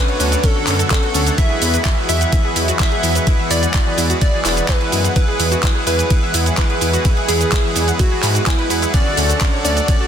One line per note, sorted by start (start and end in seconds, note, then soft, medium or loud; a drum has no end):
0.00 0.88 D3 medium
0.00 1.34 D3 medium
0.00 8.90 F#3 medium
0.00 1.34 A3 medium
0.00 8.90 B3 medium
0.00 0.88 D4 medium
0.00 5.12 F#4 medium
0.00 0.88 A4 medium
0.00 0.45 B4 loud
0.00 0.88 C#5 medium
0.00 0.88 F#5 medium
0.08 0.16 C#5 medium
0.08 closed hi-hat soft
0.20 0.35 D2 medium
0.20 0.31 C#4 medium
0.20 open hi-hat medium
0.20 cabasa medium
0.32 0.37 D5 medium
0.32 closed hi-hat medium
0.32 cabasa soft
0.44 0.49 C#4 medium
0.44 0.86 A4 loud
0.44 kick loud
0.44 closed hi-hat medium
0.44 ride medium
0.44 cabasa soft
0.56 0.67 F#4 medium
0.67 0.83 F#2 loud
0.67 0.75 C#4 medium
0.67 clap medium
0.67 open hi-hat loud
0.67 cabasa medium
0.79 0.90 A4 loud
0.79 closed hi-hat medium
0.79 cabasa soft
0.90 1.02 C#4 medium
0.90 1.33 A4 medium
0.90 kick loud
0.90 clap loud
0.90 closed hi-hat medium
0.90 ride medium
0.90 cabasa soft
1.03 1.08 F#4 medium
1.03 closed hi-hat soft
1.14 1.30 D2 medium
1.14 1.23 C#4 medium
1.14 1.35 D4 medium
1.14 1.35 A4 medium
1.14 1.35 C#5 medium
1.14 1.35 F#5 medium
1.14 open hi-hat medium
1.14 cabasa medium
1.27 1.37 A4 medium
1.27 closed hi-hat medium
1.27 cabasa soft
1.38 2.77 E3 medium
1.38 8.90 E3 medium
1.38 8.90 G#3 medium
1.38 2.77 E4 medium
1.38 1.50 E4 medium
1.38 2.77 G#4 medium
1.38 2.77 B4 medium
1.38 2.00 E5 loud
1.38 2.77 F#5 medium
1.38 kick loud
1.38 closed hi-hat medium
1.38 ride medium
1.38 cabasa soft
1.50 1.55 G#4 medium
1.62 1.77 E2 medium
1.62 1.70 E4 medium
1.62 open hi-hat loud
1.62 cabasa medium
1.74 1.85 B4 medium
1.74 closed hi-hat medium
1.74 cabasa soft
1.85 1.94 E4 medium
1.85 kick loud
1.85 clap loud
1.85 closed hi-hat medium
1.85 ride medium
1.85 cabasa soft
1.98 2.05 E5 medium
2.09 2.24 E2 medium
2.09 2.20 E4 medium
2.09 2.71 E5 loud
2.09 open hi-hat medium
2.09 cabasa medium
2.21 2.26 F#5 medium
2.21 closed hi-hat medium
2.21 cabasa soft
2.32 2.38 E4 medium
2.32 kick loud
2.32 closed hi-hat medium
2.32 ride medium
2.32 cabasa soft
2.45 2.56 G#4 medium
2.56 2.72 E2 loud
2.56 2.65 E4 medium
2.56 open hi-hat loud
2.56 cabasa medium
2.68 2.76 F#4 loud
2.68 closed hi-hat medium
2.68 cabasa soft
2.79 3.24 E3 medium
2.79 3.24 E4 medium
2.79 2.91 E4 medium
2.79 3.24 G#4 medium
2.79 3.24 B4 medium
2.79 3.41 E5 loud
2.79 3.24 F#5 medium
2.79 kick loud
2.79 clap loud
2.79 closed hi-hat medium
2.79 ride medium
2.79 cabasa soft
2.92 2.97 G#4 medium
2.92 closed hi-hat soft
3.03 3.19 E2 loud
3.03 3.12 E4 medium
3.03 open hi-hat loud
3.03 cabasa medium
3.15 3.26 B4 medium
3.15 closed hi-hat medium
3.15 cabasa soft
3.27 4.66 E3 medium
3.27 4.66 E4 medium
3.27 3.35 E4 medium
3.27 4.66 G#4 medium
3.27 4.66 B4 medium
3.27 4.66 F#5 medium
3.27 kick loud
3.27 closed hi-hat medium
3.27 ride medium
3.27 cabasa soft
3.39 3.47 E5 medium
3.51 3.66 E2 medium
3.51 3.62 E4 medium
3.51 4.12 D5 loud
3.51 open hi-hat loud
3.51 cabasa medium
3.63 3.68 F#5 medium
3.63 closed hi-hat medium
3.63 cabasa soft
3.74 3.79 E4 medium
3.74 kick loud
3.74 clap loud
3.74 closed hi-hat medium
3.74 ride medium
3.74 cabasa soft
3.86 3.97 G#4 medium
3.98 4.13 E2 medium
3.98 4.06 E4 medium
3.98 open hi-hat loud
3.98 cabasa medium
4.10 4.18 F#4 loud
4.10 closed hi-hat medium
4.10 cabasa soft
4.21 4.33 E4 medium
4.21 4.70 D5 loud
4.21 kick loud
4.21 closed hi-hat medium
4.21 ride medium
4.21 cabasa soft
4.34 4.38 G#4 medium
4.45 4.61 E1 medium
4.45 4.53 E4 medium
4.45 clap medium
4.45 open hi-hat loud
4.45 cabasa medium
4.57 4.68 B4 medium
4.57 closed hi-hat medium
4.57 cabasa soft
4.68 5.13 E3 medium
4.68 5.13 E4 medium
4.68 4.77 E4 medium
4.68 5.13 G#4 medium
4.68 5.13 B4 medium
4.68 5.11 B4 loud
4.68 5.13 F#5 medium
4.68 kick loud
4.68 clap loud
4.68 closed hi-hat medium
4.68 ride medium
4.68 cabasa soft
4.81 4.89 E5 medium
4.81 closed hi-hat soft
4.92 5.08 F#2 medium
4.92 5.04 E4 medium
4.92 open hi-hat loud
4.92 cabasa medium
5.04 5.09 F#5 medium
5.04 closed hi-hat medium
5.04 cabasa soft
5.16 6.55 E3 medium
5.16 5.21 E4 medium
5.16 6.55 E4 medium
5.16 6.55 G#4 medium
5.16 8.90 G#4 medium
5.16 6.55 B4 medium
5.16 5.78 B4 loud
5.16 6.55 F#5 medium
5.16 kick loud
5.16 closed hi-hat medium
5.16 ride medium
5.16 cabasa soft
5.28 5.39 G#4 medium
5.40 5.55 E2 loud
5.40 5.48 E4 medium
5.40 open hi-hat loud
5.40 cabasa medium
5.52 5.60 F#4 loud
5.52 closed hi-hat medium
5.52 cabasa soft
5.63 5.75 E4 medium
5.63 kick loud
5.63 clap loud
5.63 closed hi-hat medium
5.63 ride medium
5.63 cabasa soft
5.75 5.80 G#4 medium
5.87 6.02 E2 medium
5.87 5.95 E4 medium
5.87 6.49 B4 loud
5.87 open hi-hat loud
5.87 cabasa medium
5.99 6.10 B4 medium
5.99 closed hi-hat medium
5.99 cabasa soft
6.10 6.19 E4 medium
6.10 kick loud
6.10 closed hi-hat medium
6.10 ride medium
6.10 cabasa soft
6.23 6.31 E5 medium
6.34 6.50 E2 loud
6.34 6.46 E4 medium
6.34 open hi-hat loud
6.34 cabasa medium
6.46 6.51 F#5 medium
6.46 closed hi-hat medium
6.46 cabasa soft
6.57 7.02 E3 medium
6.57 6.63 E4 medium
6.57 7.02 E4 medium
6.57 7.02 G#4 medium
6.57 7.19 B4 loud
6.57 7.02 B4 medium
6.57 7.02 F#5 medium
6.57 kick loud
6.57 clap loud
6.57 closed hi-hat medium
6.57 ride medium
6.57 cabasa soft
6.70 6.81 G#4 medium
6.70 closed hi-hat soft
6.81 6.97 E2 loud
6.81 6.90 E4 medium
6.81 open hi-hat loud
6.81 cabasa medium
6.93 7.01 F#4 loud
6.93 closed hi-hat medium
6.93 cabasa soft
7.05 8.44 E3 medium
7.05 7.16 E4 medium
7.05 8.44 E4 medium
7.05 8.44 G#4 medium
7.05 8.44 B4 medium
7.05 8.44 F#5 medium
7.05 kick loud
7.05 closed hi-hat medium
7.05 ride medium
7.05 cabasa soft
7.17 7.22 G#4 medium
7.17 closed hi-hat soft
7.28 7.44 E2 medium
7.28 7.37 E4 medium
7.28 7.90 G#4 loud
7.28 open hi-hat loud
7.28 cabasa medium
7.41 7.52 B4 medium
7.41 closed hi-hat medium
7.41 cabasa soft
7.52 7.60 E4 medium
7.52 kick loud
7.52 clap loud
7.52 closed hi-hat medium
7.52 ride medium
7.52 cabasa soft
7.64 7.72 E5 medium
7.76 7.91 E2 medium
7.76 7.87 E4 medium
7.76 open hi-hat loud
7.76 cabasa medium
7.88 7.93 F#5 medium
7.88 closed hi-hat medium
7.88 cabasa soft
7.99 8.04 E4 medium
7.99 8.42 F#4 medium
7.99 kick loud
7.99 closed hi-hat medium
7.99 ride medium
7.99 cabasa soft
8.12 8.22 G#4 medium
8.23 8.39 G#2 loud
8.23 8.31 B4 medium
8.23 clap medium
8.23 open hi-hat loud
8.23 cabasa medium
8.35 8.43 F#4 medium
8.35 closed hi-hat soft
8.35 cabasa soft
8.46 8.89 E4 medium
8.46 8.58 G#5 loud
8.46 kick loud
8.46 clap loud
8.46 closed hi-hat medium
8.46 ride medium
8.46 cabasa soft
8.59 8.69 B4 loud
8.59 closed hi-hat soft
8.70 8.86 E2 medium
8.70 8.91 E4 medium
8.70 8.91 G#4 medium
8.70 8.91 B4 medium
8.70 8.75 B4 medium
8.70 8.91 F#5 medium
8.70 open hi-hat loud
8.70 cabasa medium
8.82 8.90 E4 medium
8.82 closed hi-hat soft
8.82 cabasa soft
8.94 10.07 D3 medium
8.94 10.07 F#3 medium
8.94 10.07 A3 medium
8.94 9.05 C#4 medium
8.94 10.07 D4 medium
8.94 10.07 F#4 medium
8.94 10.07 A4 medium
8.94 10.07 D5 medium
8.94 9.56 D5 loud
8.94 10.07 F#5 medium
8.94 kick loud
8.94 closed hi-hat medium
8.94 ride medium
8.94 cabasa soft
9.06 9.11 F#4 medium
9.17 9.33 D2 loud
9.17 9.26 C#4 medium
9.17 open hi-hat loud
9.17 cabasa medium
9.30 9.41 A4 medium
9.30 closed hi-hat medium
9.30 cabasa soft
9.41 9.49 C#4 medium
9.41 kick loud
9.41 clap loud
9.41 closed hi-hat medium
9.41 ride medium
9.41 cabasa soft
9.53 9.61 C#5 medium
9.65 9.80 D2 medium
9.65 9.76 C#4 medium
9.65 10.07 D5 loud
9.65 open hi-hat loud
9.65 cabasa medium
9.77 9.82 D5 medium
9.77 closed hi-hat medium
9.77 cabasa soft
9.88 9.93 C#4 medium
9.88 kick loud
9.88 closed hi-hat medium
9.88 ride medium
9.88 cabasa soft
10.01 10.07 F#4 medium